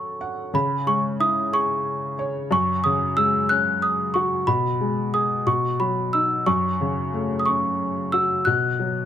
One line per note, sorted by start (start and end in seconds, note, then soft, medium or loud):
0.00 0.50 F#3 medium
0.00 0.17 C#4 soft
0.00 0.50 A4 soft
0.00 0.51 C#5 soft
0.00 0.50 C#6 medium
0.21 0.53 F#5 medium
0.54 2.47 C#3 medium
0.54 0.85 B5 medium
0.87 2.14 G#3 soft
0.87 1.02 C#6 medium
1.20 2.47 E4 medium
1.20 1.54 D#6 medium
1.53 2.48 G#4 medium
1.53 2.23 C#6 medium
2.19 2.50 C#5 medium
2.51 4.43 F#2 medium
2.51 2.86 C#6 medium
2.84 4.11 C#3 medium
2.84 3.18 D#6 medium
3.17 4.44 G#3 medium
3.17 3.50 E6 loud
3.49 4.45 C#4 soft
3.49 3.83 F#6 loud
3.82 4.16 D#6 medium
4.14 4.47 F#4 medium
4.14 4.48 C#6 medium
4.47 5.44 B2 medium
4.47 5.09 B5 medium
4.80 5.45 G#3 soft
5.13 5.46 G#4 soft
5.13 5.48 D#6 medium
5.47 6.44 B2 medium
5.47 5.81 C#6 medium
5.80 6.45 F#3 soft
5.80 6.14 B5 medium
6.13 6.46 D#4 soft
6.13 6.48 E6 medium
6.46 8.42 F#2 medium
6.46 7.43 C#6 medium
6.81 8.09 C#3 soft
7.14 8.42 A3 soft
7.40 7.47 D#6 medium
7.46 8.44 C#4 soft
7.46 8.14 C#6 medium
8.12 8.45 F#4 medium
8.12 8.47 E6 medium
8.45 9.05 B2 medium
8.45 9.05 F#6 medium
8.79 9.05 F#3 soft